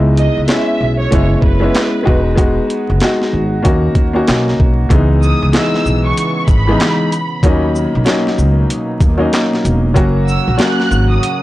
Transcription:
Already playing: C#2 G#3 B3 D#4 E4
0.17 D#5, closed hi-hat
0.37 C#2
0.48 G#3 B3 C#4 E4 E5, snare, clap, closed hi-hat
0.81 B1
0.99 C#5
1.11 F#1 G#3 B3 C#4 E4, kick, closed hi-hat
1.42 F#1 B4, kick
1.60 G#3 B3 C#4 E4
1.75 snare, clap, closed hi-hat
2.03 G#3 B3 D#4 F#4
2.07 E1, kick
2.35 G#3 B3 D#4 F#4, kick, closed hi-hat
2.70 closed hi-hat
2.90 F#1
3.00 G#3 B3 D#4 F#4, snare, clap, closed hi-hat
3.22 snare
3.33 G#1
3.63 D#2 A#3 C#4 D#4 F#4, kick, closed hi-hat
3.95 D#2, kick, closed hi-hat
4.13 A#3 C#4 D#4 F#4
4.27 B1 A#3 C#4 D#4 F#4, snare, clap, closed hi-hat
4.48 snare
4.60 B1, kick
4.89 C#2 C#3 E3 G#3 B3 D#4, kick, closed hi-hat
5.22 D#6, shaker
5.42 C#2
5.52 E3 G#3 B3 D#4 E6, snare, clap, closed hi-hat
5.74 snare
5.86 B1, shaker
6.05 C#6
6.17 closed hi-hat
6.47 G#1 B5, kick, closed hi-hat, shaker
6.68 E3 G#3 B3 D#4
6.80 snare, clap, closed hi-hat
7.12 closed hi-hat, shaker
7.43 D#2 B2 F#3 A#3 C#4 D#4, kick, closed hi-hat
7.75 shaker
7.95 B1
8.05 F#3 A#3 C#4 D#4, snare, clap, closed hi-hat
8.27 snare
8.38 C#2, shaker
8.70 closed hi-hat
9.00 D#2, kick, closed hi-hat, shaker
9.17 F#3 A#3 C#4 D#4
9.33 snare, clap, closed hi-hat
9.53 snare
9.65 E1, closed hi-hat, shaker
9.94 F#1 C#3 F#3 A#3 C#4 F#4, kick, closed hi-hat
10.28 E6, shaker
10.48 A#1
10.58 F#3 A#3 C#4 F#4 F#6, snare, clap, closed hi-hat
10.80 snare
10.91 G#1, shaker
11.11 D#6
11.23 closed hi-hat

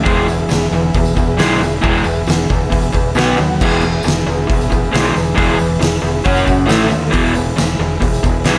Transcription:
0.03 E1 E2 E3 G#3 G#4 B4 E5, kick, open hi-hat
0.08 tambourine
0.18 tambourine
0.27 E2 E3, tambourine
0.38 tambourine
0.49 E1 E2 E3, snare, open hi-hat, tambourine
0.62 tambourine
0.71 E1 E2 E3, tambourine
0.94 E1 E2 E3, kick, open hi-hat, tambourine
1.05 tambourine
1.16 E1 E2 E3, kick, tambourine
1.29 tambourine
1.37 B1 E2 E3 G#3, snare, open hi-hat, tambourine
1.60 E1 E2 E3, tambourine
1.72 tambourine
1.82 E1 E2 E3 G#3, kick, open hi-hat, tambourine
1.94 tambourine
2.04 E1 E2 E3, tambourine
2.17 tambourine
2.27 E1 E2 E3, snare, open hi-hat, tambourine
2.50 E1 E2 E3, kick
2.61 tambourine
2.70 E1 E2 E3, kick, open hi-hat, tambourine
2.82 tambourine
2.92 E1 E2 E3, kick, tambourine
3.15 B1 B2 F#3 B3 F#4 B4 F#5, snare, open hi-hat, tambourine
3.27 tambourine
3.37 D#2 B2 F#3, tambourine
3.49 tambourine
3.60 E1 E2 E3 G#3 B4, kick, crash, tambourine
3.64 G#4 E5
3.72 tambourine
3.81 E2 E3, tambourine
4.03 E1 E2 E3, tambourine
4.07 snare, open hi-hat
4.26 E1 E2 E3, tambourine
4.47 E1 E2 E3, kick, open hi-hat, tambourine
4.61 tambourine
4.70 E1 E2 E3, kick, tambourine
4.84 tambourine
4.92 B1 E2 E3 G#3, snare, open hi-hat, tambourine
5.14 E1 E2 E3, tambourine
5.27 tambourine
5.35 E1 E2 E3 G#3, kick, open hi-hat, tambourine
5.50 tambourine
5.58 E1 E2 E3, tambourine
5.72 tambourine
5.80 E1 E2 E3, snare, open hi-hat, tambourine
6.02 E1 E2 E3
6.06 tambourine
6.24 F#1 F#3 C#4 F#4 C#5 F#5, kick, open hi-hat, tambourine
6.36 tambourine
6.46 F#1 F#3 C#4, kick, tambourine
6.58 tambourine
6.66 A1 A2 E3 A3 E4 A4 E5, open hi-hat, tambourine
6.71 snare
6.87 A2 E3, tambourine
6.91 D#2
7.04 tambourine
7.10 E1 E2 B2 E3 G#4 B4 E5, kick, open hi-hat, tambourine
7.26 tambourine
7.33 E2 B2, tambourine
7.56 E1 E2 B2, snare, open hi-hat, tambourine
7.79 E1 E2 B2, tambourine
8.00 E1 E2 B2, kick, open hi-hat, tambourine
8.14 tambourine
8.23 E1 E2 B2, kick, tambourine
8.36 tambourine
8.44 B1 E2 B2 E3, snare, open hi-hat, tambourine

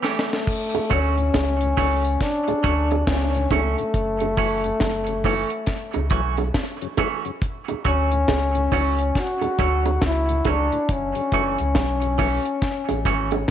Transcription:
0.03 E3 A3 C#4 G4, snare
0.19 snare
0.30 muted clean electric guitar stroke, snare
0.47 kick, crash
0.74 D2 A2, closed hi-hat, high bongo
0.89 D2 D3 F#3 A3 C#4 F#4, kick, closed hi-hat
1.17 D2 A2, closed hi-hat
1.34 C#2, kick, snare, closed hi-hat, high bongo
1.61 D2 A2, closed hi-hat
1.77 C#2 D3 F#3 A3 C#4 F#4, kick, open hi-hat, low bongo
2.04 closed hi-hat
2.21 D4, kick, snare, closed hi-hat
2.48 D2 A2, closed hi-hat, high bongo
2.63 D2 D3 F#3 A3 C#4 F#4, kick, closed hi-hat
2.91 F#3 C#4, muted clean electric guitar stroke, closed hi-hat, high bongo
3.07 C#2 C#4, kick, snare, closed hi-hat
3.35 D2 A2, closed hi-hat
3.50 C#2 D3 F#3 A3 C#4 F#4, kick, closed hi-hat, high bongo, low bongo
3.78 D2 A2, closed hi-hat
3.94 F#1, kick, closed hi-hat
4.20 F#2 C#3, closed hi-hat, high bongo
4.37 E3 F#3 A3 C#4 F#4, kick, open hi-hat
4.64 F#2 C#3, closed hi-hat
4.80 F#1, kick, snare, closed hi-hat, high bongo
5.07 F#2 C#3, closed hi-hat
5.24 E3 F#3 A3 C#4 F#4, kick, open hi-hat, low bongo
5.50 closed hi-hat
5.66 kick, snare, closed hi-hat
5.93 C#2 F#2 C#3, closed hi-hat, high bongo
6.10 B1 E3 F#3 A3 C#4 F#4, kick, closed hi-hat
6.37 F#3 A3, muted clean electric guitar stroke, closed hi-hat, high bongo
6.54 kick, snare, closed hi-hat
6.81 F#2 C#3, closed hi-hat
6.97 E3 F#3 A3 C#4 F#4, kick, closed hi-hat, high bongo, low bongo
7.25 F#2 C#3, closed hi-hat
7.42 kick, closed hi-hat
7.68 D2 A2, closed hi-hat, high bongo
7.84 D2 D3 F#3 A3 C#4 F#4, kick, closed hi-hat
8.11 D2 A2, closed hi-hat
8.28 C#2, kick, snare, closed hi-hat, high bongo
8.55 D2 A2, closed hi-hat
8.71 C#2 D3 F#3 A3 C#4 F#4, kick, open hi-hat, low bongo
8.99 closed hi-hat
9.15 kick, snare, closed hi-hat
9.19 F#4
9.41 D2 A2, closed hi-hat, high bongo
9.59 D2 D3 F#3 A3 C#4 F#4, kick, closed hi-hat
9.85 F#3 C#4, muted clean electric guitar stroke, closed hi-hat, high bongo
10.02 C#2, kick, snare, closed hi-hat
10.06 E4
10.29 D2 A2, closed hi-hat
10.45 C#2 D3 F#3 A3 C#4 F#4, kick, closed hi-hat, high bongo, low bongo
10.49 D4
10.72 D2 A2, closed hi-hat
10.89 F#1 C#4, kick, closed hi-hat
11.15 F#2 C#3, closed hi-hat
11.32 F#1 E3 F#3 A3 C#4 F#4, kick, closed hi-hat
11.58 C#2 F#2 C#3, closed hi-hat
11.75 B1, kick, snare, closed hi-hat, high bongo
12.01 F#2 C#3, closed hi-hat
12.18 E3 F#3 A3 C#4 F#4, kick, open hi-hat, low bongo
12.45 closed hi-hat
12.62 kick, snare, closed hi-hat
12.88 A1 F#2 C#3, closed hi-hat, high bongo
13.04 G#1 E3 F#3 A3 C#4 F#4, kick, closed hi-hat
13.31 F#3 A3, muted clean electric guitar stroke, closed hi-hat, high bongo

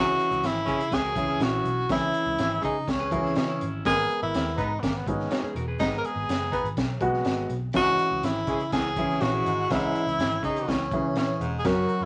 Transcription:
Already playing: C#2 E3 C#4 F#4 G#4
0.19 closed hi-hat
0.31 C#2, closed hi-hat
0.43 G#1 E4, snare, closed hi-hat
0.66 C#3 E3 G#3 C#4 E4 G#4, kick, closed hi-hat
0.79 E4 G#4, closed hi-hat
0.91 C#2 G#4 B4, kick, snare, closed hi-hat
1.04 F#4 A#4
1.16 C#2 E3 C#4 E4 G#4, kick, closed hi-hat
1.28 C#4 E4
1.40 A#1 F#4, snare, closed hi-hat
1.64 B1, closed hi-hat
1.89 C#2 E3 C#4 E4 G#4, kick, snare, closed hi-hat
2.14 closed hi-hat
2.26 C#2
2.38 G#1, snare, closed hi-hat
2.61 C#3 E3 G#3 C#4 D#4 G#4, kick, closed hi-hat
2.87 C#2 C#4, kick, snare, closed hi-hat
3.00 G#4 B4
3.11 C#2 E3 C#4 F#4 G#4 A#4, kick, closed hi-hat
3.23 E4 G#4, snare
3.36 C#3 C#4 D#4 F#4, snare, closed hi-hat
3.49 C#4 E4
3.61 G#1, closed hi-hat
3.85 G#1 G#3 A#3 G#4 A#4, kick, snare, closed hi-hat
3.92 B3
4.09 closed hi-hat
4.22 G#1 E4
4.34 D#2, snare, closed hi-hat
4.58 G#2 G#3 B3 D#4 B4, kick, closed hi-hat
4.79 G#1 A#3 B3, kick, closed hi-hat
4.84 snare
4.97 B3
5.06 G#1 G#3 B3 C#4 D#4, kick, closed hi-hat
5.20 snare
5.31 D#4 F#4, snare, closed hi-hat
5.43 G#4, muted picked electric bass stroke
5.55 E1 F#4 A#4, closed hi-hat
5.68 G#4 B4
5.80 G#1 G#3 B3 D#4 A#5, kick, snare, closed hi-hat
5.98 A#4
6.04 G#4, closed hi-hat
6.15 G#1
6.28 F#1, snare, closed hi-hat
6.52 G#3 B3 D#4 B4, kick, closed hi-hat
6.64 G#1, closed hi-hat
6.77 B1, kick, snare, closed hi-hat
7.00 B1 G#3 B3 F#4, kick, closed hi-hat
7.14 snare
7.25 G#1, snare, closed hi-hat
7.50 B1, closed hi-hat
7.73 G#2 E3 C#4 F#4 G#4, kick, snare, closed hi-hat
7.98 closed hi-hat
8.11 C#2
8.23 G#1 E4, snare, closed hi-hat
8.47 C#3 E3 G#3 C#4 G#4, kick, closed hi-hat
8.60 closed hi-hat
8.72 C#2 E2 G#4, kick, snare, closed hi-hat
8.96 C#2 E3 C#4 E4 G#4, kick, closed hi-hat
9.10 snare
9.21 A#1 D#4 F#4, snare, closed hi-hat
9.35 E4 G#4
9.45 G#1 G#2, closed hi-hat
9.70 C#2 G#2 E3 C#4 E4 G#4, kick, snare, closed hi-hat
9.95 closed hi-hat
10.07 C#2, closed hi-hat
10.18 G#1, snare, closed hi-hat
10.43 C#3 E3 G#3 C#4 D#4 G#4, kick, closed hi-hat
10.56 closed hi-hat
10.67 C#2 E2 C#4, kick, snare, closed hi-hat
10.91 C#2 E3 C#4 G#4, kick, closed hi-hat
11.15 A#1 C#4, snare, closed hi-hat
11.40 E1 G#2, closed hi-hat
11.59 G#4
11.64 F#1 F#2 F#3 C#4 F#4 A#4, kick, snare, closed hi-hat
11.89 closed hi-hat
12.01 F#1

